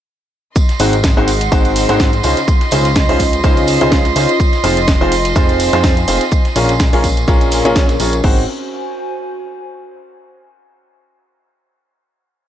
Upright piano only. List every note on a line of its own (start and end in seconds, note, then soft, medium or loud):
0.80 0.94 G#2 medium
0.80 0.94 C4 medium
0.80 0.94 D#4 medium
0.80 0.94 F#4 medium
0.80 0.94 G#4 medium
0.80 0.94 C5 medium
1.17 1.28 G#2 medium
1.17 1.28 C4 medium
1.17 1.28 D#4 medium
1.17 1.28 F#4 medium
1.17 1.28 G#4 medium
1.17 1.28 C5 loud
1.52 1.86 G#2 loud
1.52 1.86 C4 medium
1.52 1.86 D#4 medium
1.52 1.86 F#4 medium
1.52 1.86 G#4 medium
1.52 1.86 C5 loud
1.89 2.09 G#2 loud
1.89 2.09 C4 medium
1.89 2.09 D#4 medium
1.89 2.09 F#4 medium
1.89 2.09 G#4 medium
1.89 2.09 C5 loud
2.24 2.38 C#3 medium
2.24 2.38 C#4 medium
2.24 2.38 D#4 medium
2.24 2.38 F4 medium
2.24 2.38 G#4 medium
2.24 2.38 C5 medium
2.72 2.86 C#3 medium
2.72 2.86 C#4 medium
2.72 2.86 D#4 medium
2.72 2.86 F4 medium
2.72 2.86 G#4 medium
2.72 2.86 C5 medium
3.09 3.20 C#3 medium
3.09 3.20 C#4 medium
3.09 3.20 D#4 medium
3.09 3.20 F4 medium
3.09 3.20 G#4 medium
3.09 3.20 C5 loud
3.44 3.78 C#3 loud
3.44 3.78 C#4 medium
3.44 3.78 D#4 medium
3.44 3.78 F4 medium
3.44 3.78 G#4 medium
3.44 3.78 C5 loud
3.81 4.01 C#3 loud
3.81 4.01 C#4 medium
3.81 4.01 D#4 medium
3.81 4.01 F4 medium
3.81 4.01 G#4 medium
3.81 4.01 C5 loud
4.16 4.30 C#4 medium
4.16 4.30 D#4 medium
4.16 4.30 F4 medium
4.16 4.30 G#4 medium
4.16 4.30 C5 medium
4.64 4.77 F3 medium
4.64 4.77 C4 medium
4.64 4.77 D#4 medium
4.64 4.77 F4 medium
4.64 4.77 G#4 medium
4.64 4.77 C5 medium
5.01 5.12 F3 loud
5.01 5.12 C4 medium
5.01 5.12 D#4 medium
5.01 5.12 F4 medium
5.01 5.12 G#4 medium
5.01 5.12 C5 loud
5.36 5.70 F3 loud
5.36 5.70 C4 medium
5.36 5.70 D#4 medium
5.36 5.70 F4 medium
5.36 5.70 G#4 medium
5.36 5.70 C5 loud
5.73 5.93 F3 loud
5.73 5.93 C4 medium
5.73 5.93 D#4 medium
5.73 5.93 F4 medium
5.73 5.93 G#4 medium
5.73 5.93 C5 loud
6.08 6.22 C4 medium
6.08 6.22 D#4 medium
6.08 6.22 F4 medium
6.08 6.22 G#4 medium
6.08 6.22 C5 medium
6.56 6.70 A#2 medium
6.56 6.70 C#4 medium
6.56 6.70 F4 medium
6.56 6.70 G#4 medium
6.56 6.70 A#4 medium
6.56 6.70 C#5 medium
6.93 7.04 A#2 medium
6.93 7.04 C#4 medium
6.93 7.04 F4 medium
6.93 7.04 G#4 medium
6.93 7.04 A#4 medium
6.93 7.04 C#5 loud
7.28 7.62 A#2 loud
7.28 7.62 C#4 medium
7.28 7.62 F4 medium
7.28 7.62 G#4 medium
7.28 7.62 A#4 medium
7.28 7.62 C#5 loud
7.65 7.85 A#2 loud
7.65 7.85 C#4 medium
7.65 7.85 F4 medium
7.65 7.85 G#4 medium
7.65 7.85 A#4 medium
7.65 7.85 C#5 loud
8.00 8.14 C#4 medium
8.00 8.14 F4 medium
8.00 8.14 G#4 medium
8.00 8.14 A#4 medium
8.00 8.14 C#5 medium
8.24 8.42 C4 medium
8.24 8.42 D#4 medium
8.24 8.42 F#4 medium
8.24 8.42 G#4 medium
8.24 8.42 C5 medium